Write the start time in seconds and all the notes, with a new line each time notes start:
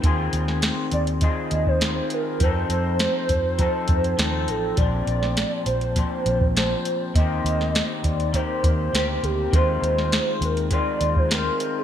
0.02 D#2 D#3 C4 F4, kick, closed hi-hat
0.06 G#4
0.33 D#2, closed hi-hat
0.48 snare
0.62 snare, closed hi-hat
0.92 D#2 D5, closed hi-hat
1.07 closed hi-hat
1.21 D#3 C4 F4 G#4 D#5, kick, closed hi-hat
1.51 D#2, closed hi-hat
1.67 C5, kick
1.80 D#3 C4 F4 G#4, snare, closed hi-hat
2.10 A#4, closed hi-hat
2.40 F2 F3 C4 D#4 C5, kick, closed hi-hat
2.44 A4
2.69 F2 C5, closed hi-hat
2.99 snare, closed hi-hat
3.29 F2, kick, closed hi-hat
3.58 F3 C4 D#4 A4, kick, closed hi-hat
3.88 F2, kick, closed hi-hat
4.04 closed hi-hat
4.17 D#2 F3 C4 D#4 A4, snare, closed hi-hat
4.48 A1 A4, closed hi-hat
4.76 A#1 A#2 F3 C4 D5, kick, closed hi-hat
4.81 D4
5.07 A#1, closed hi-hat
5.23 snare
5.37 snare, closed hi-hat
5.66 A#1 C5, closed hi-hat
5.81 closed hi-hat
5.95 A#2 F3 C4 D4, kick, closed hi-hat
6.26 A#1, closed hi-hat
6.41 kick
6.55 A#2 F3 C4 D4 C5, snare, closed hi-hat
6.85 closed hi-hat
7.14 D#2 D#3 A#3 C4 D#5, kick, closed hi-hat
7.19 G4
7.44 D#2, closed hi-hat
7.61 snare
7.75 snare, closed hi-hat
8.04 D#2 D5, kick, closed hi-hat
8.20 closed hi-hat
8.33 D#3 A#3 C4 G4 C5, kick, closed hi-hat
8.64 D#2, kick, closed hi-hat
8.93 D2 D#3 A#3 C4 G4, snare, closed hi-hat
9.23 D2 G4, closed hi-hat
9.51 D#2 D#3 G#3 C4 C5, kick, closed hi-hat
9.56 F4
9.82 D#2, closed hi-hat
9.98 snare
10.12 snare, closed hi-hat
10.41 D#2 A#4, closed hi-hat
10.57 closed hi-hat
10.71 D#3 G#3 C4 F4 D5, kick, closed hi-hat
11.01 D#2, closed hi-hat
11.16 C5, kick
11.29 D#3 G#3 C4 F4, snare, closed hi-hat
11.34 A#4
11.60 closed hi-hat
11.79 G#4